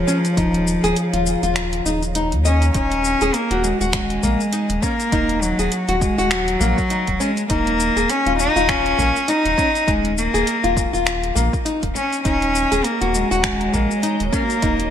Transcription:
Already playing: cello F3, ambient pad G#4 C#5 F5 A#5
0.07 nylon-string guitar C#4, shaker
0.25 closed hi-hat, shaker
0.37 analog synth bass D#1, nylon-string guitar D#4, kick, closed hi-hat, shaker
0.54 closed hi-hat
0.67 shaker
0.84 analog synth bass D#1, nylon-string guitar G#4, closed hi-hat, shaker
0.96 closed hi-hat, shaker
1.13 analog synth bass D#1, nylon-string guitar F4, closed hi-hat
1.26 shaker
1.43 analog synth bass D#1, nylon-string guitar F4, closed hi-hat, shaker
1.56 finger snap, closed hi-hat, shaker
1.73 closed hi-hat
1.85 analog synth bass D#1, nylon-string guitar D#4, shaker
2.03 closed hi-hat, shaker
2.15 nylon-string guitar D#4, closed hi-hat, shaker
2.32 analog synth bass D#2, closed hi-hat
2.45 cello C#4, nylon-string guitar D#5, shaker
2.62 closed hi-hat, shaker
2.74 analog synth bass D#1, cello C#4, nylon-string guitar D#4, kick, closed hi-hat, shaker
2.92 closed hi-hat
3.04 shaker
3.21 analog synth bass D#1, nylon-string guitar G#4, closed hi-hat, shaker
3.34 cello A#3, closed hi-hat, shaker
3.51 analog synth bass D#1, nylon-string guitar F#4, closed hi-hat
3.63 cello G#3, shaker
3.81 analog synth bass D#1, nylon-string guitar F#4, shaker
3.93 cello G#3, finger snap, kick, closed hi-hat, shaker
4.10 closed hi-hat
4.23 analog synth bass A#1, nylon-string guitar A#3, kick, shaker
4.41 shaker
4.53 nylon-string guitar D#4, closed hi-hat, shaker
4.70 analog synth bass D#1, closed hi-hat
4.82 cello A#3, nylon-string guitar C#4, kick, shaker
5.00 closed hi-hat, shaker
5.12 analog synth bass D#1, nylon-string guitar D#4, kick, closed hi-hat, shaker
5.29 closed hi-hat
5.42 cello F#3, shaker
5.59 analog synth bass D#1, nylon-string guitar G#4, closed hi-hat, shaker
5.72 closed hi-hat, shaker
5.89 analog synth bass D#1, nylon-string guitar F#4, closed hi-hat
6.01 cello G#3, kick, shaker
6.18 analog synth bass D#1, nylon-string guitar F#4, shaker
6.31 cello F#3, finger snap, closed hi-hat, shaker
6.48 closed hi-hat
6.60 analog synth bass A#1, nylon-string guitar A#3, shaker
6.78 kick, shaker
6.90 nylon-string guitar D#4, closed hi-hat, shaker
7.07 analog synth bass D#1, kick, closed hi-hat
7.20 cello G#3, nylon-string guitar C#4, shaker
7.37 closed hi-hat, shaker
7.50 analog synth bass D#1, cello A#3, nylon-string guitar D#4, kick, closed hi-hat, shaker
7.67 closed hi-hat
7.80 shaker
7.97 analog synth bass D#1, nylon-string guitar G#4, closed hi-hat, shaker
8.10 cello C#4, closed hi-hat, shaker
8.26 analog synth bass D#1, nylon-string guitar F4, closed hi-hat
8.39 cello D#4, shaker
8.56 analog synth bass D#1, nylon-string guitar F4, shaker
8.69 cello C#4, finger snap, kick, closed hi-hat, shaker
8.86 closed hi-hat
8.98 analog synth bass A#1, nylon-string guitar A#3, kick, shaker
9.16 shaker
9.28 nylon-string guitar D#4, cello D#4, closed hi-hat, shaker
9.45 analog synth bass D#1, closed hi-hat
9.58 nylon-string guitar C#4, kick, shaker
9.75 closed hi-hat, shaker
9.87 analog synth bass D#1, cello G#3, nylon-string guitar D#4, kick, closed hi-hat, shaker
10.05 closed hi-hat
10.18 cello A#3, shaker
10.34 analog synth bass D#1, nylon-string guitar G#4, closed hi-hat, shaker
10.47 closed hi-hat, shaker
10.64 analog synth bass D#1, nylon-string guitar F4, closed hi-hat
10.77 kick, shaker
10.93 analog synth bass D#1, nylon-string guitar F4, shaker
11.07 finger snap, closed hi-hat, shaker
11.24 closed hi-hat
11.35 analog synth bass A#1, nylon-string guitar A#3, shaker
11.53 kick, shaker
11.65 nylon-string guitar D#4, closed hi-hat, shaker
11.83 analog synth bass D#1, kick, closed hi-hat
11.95 nylon-string guitar C#4, cello C#4, shaker
12.13 closed hi-hat, shaker
12.25 analog synth bass D#1, cello C#4, nylon-string guitar D#4, ambient pad F#4 C#5 D#5 A#5, kick, closed hi-hat, shaker
12.42 closed hi-hat
12.55 shaker
12.72 analog synth bass D#1, nylon-string guitar G#4, closed hi-hat, shaker
12.84 cello A#3, closed hi-hat, shaker
13.01 analog synth bass D#1, nylon-string guitar F#4, closed hi-hat
13.14 cello G#3, shaker
13.31 analog synth bass D#1, nylon-string guitar F#4, shaker
13.43 cello G#3, finger snap, kick, closed hi-hat, shaker
13.61 closed hi-hat
13.73 analog synth bass A#1, nylon-string guitar A#3, kick, shaker
13.91 shaker
14.03 nylon-string guitar D#4, closed hi-hat, shaker
14.20 analog synth bass D#1, closed hi-hat
14.32 cello A#3, nylon-string guitar C#4, kick, shaker
14.50 closed hi-hat, shaker
14.62 analog synth bass D#1, nylon-string guitar D#4, ambient pad G#5, kick, closed hi-hat, shaker
14.80 closed hi-hat

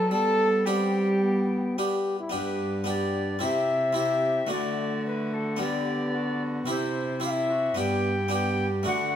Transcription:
Already playing: cello F#3, recorder A5
0.11 harpsichord G3, cello G3, trombone B3, viola A4, recorder A5
0.66 harpsichord B3 D4 G4, trombone C4, viola G4, recorder G5
1.23 trombone B3
1.78 harpsichord B3 D4 G4, trombone G4
2.20 trombone E4
2.29 harpsichord G2 B3 D4 G4, cello G2, trombone D4, viola G4, recorder B4
2.84 harpsichord B3 D4 G4, trombone D4, viola G4
2.88 recorder D5
3.39 cello C3, harpsichord C3 C4 E4 G4, trombone C4, viola G4
3.43 recorder E5
3.93 harpsichord C4 E4 G4, trombone C4
3.97 viola G4, recorder E5
4.47 harpsichord D3 A3 D4 F#4, cello D3, viola F#4
4.51 trombone A3, recorder D5
5.06 recorder B4
5.33 recorder A4
5.57 harpsichord G3 B3 D4, viola G4
5.61 trombone B3, recorder D5
6.15 viola F#4
6.66 cello C3, harpsichord C3 C4 E4 G4, viola E4
6.70 trombone C4, recorder C5
7.20 harpsichord C4 E4 G4, trombone C4, viola E4
7.25 recorder F5
7.30 recorder E5
7.50 viola F#4
7.75 cello G2, harpsichord G2 B3 D4 G4, viola G4, recorder G5
7.79 trombone B3
8.28 harpsichord B3 D4 G4, trombone B3, viola G4
8.33 recorder G5
8.83 cello D3, harpsichord D3 A3 D4 F#4, trombone D4, viola F#4, recorder F#5

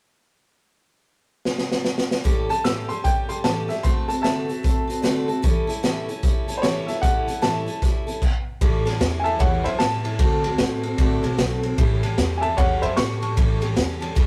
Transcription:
1.45 snare
1.58 snare
1.72 snare
1.85 snare
1.98 snare
2.11 snare
2.24 steel-string acoustic guitar A2 E3 G3 C#4 G4 A4, kick, closed hi-hat
2.49 steel-string acoustic guitar G3 C#4 G4 A4, upright piano A5, closed hi-hat
2.64 steel-string acoustic guitar A2 E3 G3 C#4 G4 A4, upright piano E6, snare, closed hi-hat
2.89 steel-string acoustic guitar G3 C#4 G4 A4, upright piano C6, closed hi-hat
3.04 steel-string acoustic guitar G3 C#4 G4 A4, upright piano G5, kick, closed hi-hat
3.29 steel-string acoustic guitar G3 C#4 G4 A4, upright piano C6, closed hi-hat
3.44 steel-string acoustic guitar A2 E3 G3 C#4 G4 A4, upright piano A5, snare, closed hi-hat
3.68 steel-string acoustic guitar G3 C#4 G4 A4, upright piano E5, snare, closed hi-hat
3.83 steel-string acoustic guitar D3 A3 C4 F#4 A4, upright piano C6, kick, closed hi-hat
4.08 steel-string acoustic guitar C4 F#4 A4, upright piano A5, closed hi-hat
4.22 steel-string acoustic guitar D3 A3 C4 F#4, upright piano E5 A5, snare, closed hi-hat
4.26 steel-string acoustic guitar A4
4.48 steel-string acoustic guitar C4 F#4 A4, closed hi-hat
4.63 steel-string acoustic guitar A3 C4 F#4 A4, kick, closed hi-hat
4.87 steel-string acoustic guitar C4 F#4 A4, closed hi-hat
5.02 steel-string acoustic guitar D3 A3 C4 F#4 A4, snare, closed hi-hat
5.28 steel-string acoustic guitar C4 F#4 A4, closed hi-hat
5.42 steel-string acoustic guitar A2 E3 G3 C#4 E4 A4, kick, closed hi-hat
5.67 steel-string acoustic guitar G3 C#4 E4 A4, closed hi-hat
5.83 steel-string acoustic guitar A2 E3 G3 C#4 E4 A4, snare, closed hi-hat
6.08 steel-string acoustic guitar G3 C#4 E4 A4, closed hi-hat
6.23 steel-string acoustic guitar G3 C#4 E4 A4, kick, closed hi-hat
6.48 steel-string acoustic guitar G3 C#4 E4 A4, closed hi-hat
6.57 upright piano C5
6.62 steel-string acoustic guitar A2 E3 G3 C#4 E4 A4, upright piano C#5, snare, closed hi-hat
6.87 steel-string acoustic guitar C#4 E4 A4, upright piano E5, snare, closed hi-hat
6.91 steel-string acoustic guitar G3
7.02 steel-string acoustic guitar A2 E3 G3 C#4 E4 A4, upright piano F#5, kick, closed hi-hat
7.27 steel-string acoustic guitar G3 C#4 E4 A4, closed hi-hat
7.42 steel-string acoustic guitar A2 E3 G3 C#4 E4 A4, upright piano A5, snare, closed hi-hat
7.67 steel-string acoustic guitar G3 C#4 E4 A4, closed hi-hat
7.82 steel-string acoustic guitar G3 C#4 E4 A4, kick, snare, closed hi-hat
8.07 steel-string acoustic guitar G3 C#4 E4 A4, closed hi-hat
8.22 kick, crash
8.61 upright bass A1, steel-string acoustic guitar A2 E3 G3 C#4 E4 A4, kick, ride
8.86 steel-string acoustic guitar G3 C#4 E4 A4, snare, ride
9.00 upright bass E2, steel-string acoustic guitar G3 C#4 E4 A4, snare, ride
9.20 upright piano G#5
9.24 steel-string acoustic guitar G3 C#4 E4 A4, upright piano E5 A5, ride
9.39 upright bass E2, steel-string acoustic guitar A2 E3 G3 C#4 E4 A4, upright piano C#5 F#5, kick, ride
9.64 upright bass F#2, steel-string acoustic guitar G3 C#4 E4 A4, upright piano C5 E5, ride
9.79 upright bass A2, steel-string acoustic guitar G3 C#4 E4 A4, upright piano A5, snare, ride
10.04 steel-string acoustic guitar G3 C#4 E4 A4, ride
10.19 upright bass D2, steel-string acoustic guitar D3 A3 C4 F#4 A4, kick, ride
10.44 steel-string acoustic guitar C4 F#4 A4, ride
10.58 upright bass A2, steel-string acoustic guitar A3 C4 F#4 A4, snare, ride
10.83 steel-string acoustic guitar C4 F#4 A4, ride
10.98 upright bass A2, steel-string acoustic guitar D3 A3 C4 F#4 A4, kick, ride
11.23 upright bass B2, steel-string acoustic guitar C4 F#4 A4, ride
11.38 upright bass B1, steel-string acoustic guitar A3 C4 F#4 A4, snare, ride
11.63 steel-string acoustic guitar C4 F#4 A4, ride
11.78 upright bass A1, steel-string acoustic guitar A2 E3 G3 C#4 G4 A4, kick, ride
12.03 steel-string acoustic guitar G3 C#4 G4 A4, ride
12.18 upright bass E2, steel-string acoustic guitar G3 C#4 G4 A4, snare, ride
12.38 upright piano E5 G#5
12.42 steel-string acoustic guitar C#4 G4 A4, upright piano A5, ride
12.46 steel-string acoustic guitar G3
12.57 upright bass E2, steel-string acoustic guitar A2 E3 G3 C#4 G4 A4, upright piano C#5 F#5, kick, ride
12.82 upright bass F#2, steel-string acoustic guitar G3 C#4 G4 A4, upright piano C5 E5, ride
12.97 upright bass A2, steel-string acoustic guitar G3 C#4 G4 A4, upright piano C#6, snare, ride
13.22 steel-string acoustic guitar G3 C#4 G4 A4, ride
13.37 upright bass A1, steel-string acoustic guitar A2 E3 G3 C#4 G4 A4, kick, ride
13.61 steel-string acoustic guitar G3 C#4 G4 A4, ride
13.76 upright bass E2, steel-string acoustic guitar G3 C#4 G4 A4, snare, ride
14.01 steel-string acoustic guitar G3 C#4 G4 A4, ride
14.15 upright bass E2, steel-string acoustic guitar A2 E3 G3 C#4 G4 A4, kick, ride

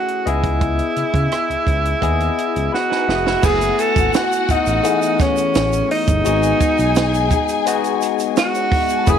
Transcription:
Already playing: tine electric piano A3 C#4 E4 F#4 G#4, tenor saxophone F#4
0.08 closed hi-hat
0.25 analog synth bass C#2, tine electric piano B3 E4 G#4 D#5, tenor saxophone E4, closed hi-hat
0.44 kick, closed hi-hat
0.61 kick, closed hi-hat
0.79 closed hi-hat
0.96 analog synth bass C#3, closed hi-hat
1.14 analog synth bass C#3, kick, closed hi-hat
1.32 cross-stick, closed hi-hat
1.50 analog synth bass C#2, closed hi-hat
1.67 analog synth bass C#2, kick, closed hi-hat
1.85 closed hi-hat
2.01 analog synth bass D#2, tine electric piano B3 E4 G#4 D#5, kick, closed hi-hat
2.20 closed hi-hat
2.38 closed hi-hat
2.56 analog synth bass C#2, closed hi-hat
2.72 tenor saxophone F#4, tine electric piano B5, snare
2.90 clean electric guitar D#4 B4, tine electric piano G#5, snare
3.08 analog synth bass F1, clean electric guitar B3 G#4, tine electric piano E5, snare
3.26 clean electric guitar G#3 E4, snare
3.42 analog synth bass F#1, tine electric piano A3 B3 E4 G#5, violin section F#4 F#5, tenor saxophone G#4, kick, crash, shaker
3.61 closed hi-hat, shaker
3.79 tenor saxophone A4, closed hi-hat, shaker
3.96 analog synth bass G#1, kick, closed hi-hat, shaker
4.13 tenor saxophone F#4, snare, closed hi-hat, shaker
4.32 closed hi-hat, shaker
4.49 analog synth bass A1, tenor saxophone D#4, kick, closed hi-hat, shaker
4.66 analog synth bass A1, closed hi-hat, shaker
4.83 tine electric piano E3 A3 B3 G#4, closed hi-hat, shaker
5.02 closed hi-hat, shaker
5.19 tenor saxophone C#4, kick, snare, closed hi-hat, shaker
5.36 closed hi-hat, shaker
5.55 analog synth bass A1, snare, closed hi-hat, shaker
5.73 closed hi-hat, shaker
5.91 tenor saxophone D#4, open hi-hat
6.08 analog synth bass G1, kick, closed hi-hat, shaker
6.24 analog synth bass G#1, tine electric piano G#3 B3 D#4 F#4, violin section G#4 G#5, closed hi-hat, shaker
6.43 closed hi-hat, shaker
6.60 kick, closed hi-hat, shaker
6.78 analog synth bass B1, closed hi-hat, shaker
6.95 snare, closed hi-hat, shaker
7.14 closed hi-hat, shaker
7.31 kick, closed hi-hat, shaker
7.48 closed hi-hat, shaker
7.66 tine electric piano G#3 B3 D#4 F#4, closed hi-hat, shaker
7.84 closed hi-hat, shaker
8.02 closed hi-hat, shaker
8.19 closed hi-hat, shaker
8.37 tenor saxophone F#4, snare, closed hi-hat, shaker
8.54 violin section C#4 C#5, closed hi-hat, shaker
8.63 violin section D#4 D#5
8.72 violin section E4 E5, kick, open hi-hat
8.80 violin section F#4 F#5
8.89 violin section G#4 G#5, closed hi-hat, shaker
8.98 violin section A4 A5
9.07 analog synth bass F#1, tine electric piano A3 B3 E4 G#4, tenor saxophone G#4, violin section B4 B5, kick, closed hi-hat, shaker

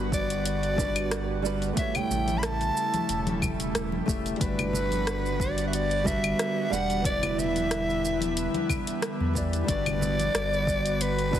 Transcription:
Already playing: sub bass G1, analog synth pad D3 G3 B3 F#4, nylon-string guitar G3 D4 F#4 B4
0.12 soprano saxophone D5, kick, shaker
0.30 closed hi-hat, shaker
0.45 soprano saxophone D5, closed hi-hat, shaker
0.63 closed hi-hat
0.76 nylon-string guitar G3 D4 F#4 B4, kick, low conga, shaker
0.96 closed hi-hat, claves, shaker
1.11 cross-stick, closed hi-hat, shaker
1.42 nylon-string guitar G3 D4 F#4 B4, shaker
1.62 closed hi-hat, shaker
1.73 nylon-string guitar A3 E4, kick, closed hi-hat
1.78 analog synth pad C#3 A3 E4, nylon-string guitar G4 C#5, soprano saxophone E5, shaker
1.95 soprano saxophone G5, closed hi-hat, low conga, claves, shaker
2.10 sub bass A1, low conga, shaker
2.28 closed hi-hat, high conga, shaker
2.38 soprano saxophone B5
2.43 soprano saxophone A5, cross-stick, closed hi-hat, shaker
2.61 closed hi-hat, shaker
2.77 shaker
2.94 closed hi-hat, high conga, shaker
3.09 sub bass E1, closed hi-hat, shaker
3.27 closed hi-hat, high conga
3.42 kick, low conga, claves, shaker
3.60 closed hi-hat, shaker
3.75 sub bass E1, cross-stick, closed hi-hat, shaker
3.92 high conga
4.06 sub bass E1, nylon-string guitar A3 E4 G4 E5, kick, shaker
4.26 closed hi-hat, shaker
4.37 sub bass G1, nylon-string guitar G3 D4, kick
4.41 analog synth pad D3 B3 F#4, nylon-string guitar F#4 B4, soprano saxophone B4, closed hi-hat, shaker
4.59 closed hi-hat, low conga, claves, shaker
4.73 low conga, shaker
4.91 closed hi-hat, high conga, shaker
5.07 cross-stick, closed hi-hat, shaker
5.26 shaker
5.40 soprano saxophone D5, kick, shaker
5.58 closed hi-hat, shaker
5.68 soprano saxophone E5
5.73 soprano saxophone D5, closed hi-hat, shaker
5.91 closed hi-hat
6.04 nylon-string guitar G3 D4 F#4, soprano saxophone E5, kick, low conga, shaker
6.08 nylon-string guitar B4
6.24 closed hi-hat, claves, shaker
6.39 cross-stick, closed hi-hat, shaker
6.70 sub bass E1, nylon-string guitar G3 D4 F#4 B4, soprano saxophone F#5, shaker
6.90 closed hi-hat, shaker
7.01 nylon-string guitar E3 E4, kick
7.05 analog synth pad E4, nylon-string guitar G4 D5, soprano saxophone D5, closed hi-hat, shaker
7.22 closed hi-hat, low conga, claves, shaker
7.38 soprano saxophone E5, low conga, shaker
7.56 closed hi-hat, high conga, shaker
7.71 cross-stick, closed hi-hat, shaker
7.90 shaker
8.05 shaker
8.21 closed hi-hat, high conga, shaker
8.37 closed hi-hat, shaker
8.54 closed hi-hat, high conga
8.69 kick, low conga, claves, shaker
8.87 closed hi-hat, shaker
9.02 cross-stick, closed hi-hat, shaker
9.20 sub bass E2, high conga
9.33 nylon-string guitar E3 E4 G4 D5, kick, shaker
9.53 closed hi-hat, shaker
9.64 sub bass G1, nylon-string guitar G3 D4
9.68 analog synth pad F#4, nylon-string guitar F#4 B4, soprano saxophone D5, kick, closed hi-hat, shaker
9.86 closed hi-hat, low conga, claves, shaker
10.01 low conga, shaker
10.19 closed hi-hat, high conga, shaker
10.34 sub bass G1, cross-stick, closed hi-hat, shaker
10.53 shaker
10.67 kick, shaker
10.86 closed hi-hat, shaker
11.01 soprano saxophone B4, closed hi-hat, shaker
11.19 closed hi-hat
11.31 nylon-string guitar G3 D4 F#4, kick, low conga, shaker
11.35 nylon-string guitar B4

